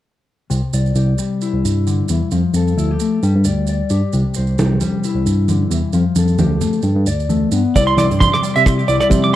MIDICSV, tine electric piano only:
0, 0, Header, 1, 2, 480
1, 0, Start_track
1, 0, Key_signature, 0, "major"
1, 0, Tempo, 452489
1, 541, Time_signature, 4, 2, 24, 8
1, 9925, End_track
2, 0, Start_track
2, 0, Title_t, "Tine electric piano"
2, 0, Program_c, 0, 4
2, 536, Note_on_c, 0, 36, 72
2, 640, Note_off_c, 0, 36, 0
2, 775, Note_on_c, 0, 36, 72
2, 967, Note_off_c, 0, 36, 0
2, 1009, Note_on_c, 0, 36, 73
2, 1204, Note_off_c, 0, 36, 0
2, 1626, Note_on_c, 0, 36, 70
2, 1740, Note_off_c, 0, 36, 0
2, 1745, Note_on_c, 0, 43, 64
2, 2124, Note_off_c, 0, 43, 0
2, 2223, Note_on_c, 0, 40, 74
2, 2325, Note_off_c, 0, 40, 0
2, 2459, Note_on_c, 0, 41, 73
2, 2563, Note_off_c, 0, 41, 0
2, 2690, Note_on_c, 0, 41, 74
2, 2886, Note_off_c, 0, 41, 0
2, 2937, Note_on_c, 0, 38, 73
2, 3130, Note_off_c, 0, 38, 0
2, 3424, Note_on_c, 0, 43, 79
2, 3526, Note_off_c, 0, 43, 0
2, 3558, Note_on_c, 0, 43, 70
2, 3656, Note_on_c, 0, 38, 75
2, 3668, Note_off_c, 0, 43, 0
2, 4039, Note_off_c, 0, 38, 0
2, 4145, Note_on_c, 0, 43, 80
2, 4248, Note_off_c, 0, 43, 0
2, 4385, Note_on_c, 0, 36, 79
2, 4487, Note_off_c, 0, 36, 0
2, 4639, Note_on_c, 0, 36, 68
2, 4824, Note_off_c, 0, 36, 0
2, 4870, Note_on_c, 0, 36, 81
2, 5058, Note_off_c, 0, 36, 0
2, 5466, Note_on_c, 0, 36, 70
2, 5583, Note_off_c, 0, 36, 0
2, 5583, Note_on_c, 0, 43, 71
2, 5963, Note_off_c, 0, 43, 0
2, 6050, Note_on_c, 0, 40, 75
2, 6158, Note_off_c, 0, 40, 0
2, 6293, Note_on_c, 0, 41, 80
2, 6400, Note_off_c, 0, 41, 0
2, 6539, Note_on_c, 0, 41, 72
2, 6731, Note_off_c, 0, 41, 0
2, 6772, Note_on_c, 0, 38, 79
2, 6967, Note_off_c, 0, 38, 0
2, 7252, Note_on_c, 0, 43, 86
2, 7359, Note_off_c, 0, 43, 0
2, 7381, Note_on_c, 0, 43, 73
2, 7489, Note_on_c, 0, 38, 72
2, 7499, Note_off_c, 0, 43, 0
2, 7874, Note_off_c, 0, 38, 0
2, 7971, Note_on_c, 0, 43, 77
2, 8078, Note_off_c, 0, 43, 0
2, 8226, Note_on_c, 0, 36, 91
2, 8414, Note_off_c, 0, 36, 0
2, 8455, Note_on_c, 0, 36, 87
2, 8560, Note_off_c, 0, 36, 0
2, 8598, Note_on_c, 0, 43, 73
2, 8785, Note_off_c, 0, 43, 0
2, 9084, Note_on_c, 0, 48, 78
2, 9355, Note_off_c, 0, 48, 0
2, 9429, Note_on_c, 0, 36, 78
2, 9527, Note_off_c, 0, 36, 0
2, 9655, Note_on_c, 0, 48, 96
2, 9925, Note_off_c, 0, 48, 0
2, 9925, End_track
0, 0, End_of_file